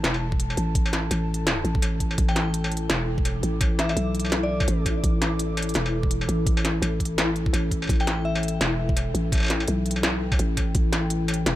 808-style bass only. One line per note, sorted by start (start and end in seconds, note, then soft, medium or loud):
0.04 0.56 E1 loud
0.57 1.10 A1 loud
1.11 1.63 A1 loud
1.64 2.17 A1 loud
2.18 2.88 A1 loud
2.90 3.42 E1 loud
3.43 3.95 A1 loud
3.96 4.67 B1 medium
4.68 5.02 A1 loud
5.04 5.74 A1 loud
5.75 6.27 E1 medium
6.29 6.81 A1 medium
6.82 7.52 A1 medium
7.53 7.88 A1 loud
7.89 8.60 A1 loud
8.61 9.13 E1 loud
9.14 9.67 A1 loud
9.68 10.38 B1 medium
10.39 10.74 A1 loud
10.75 11.45 A1 loud
11.46 11.56 E1 loud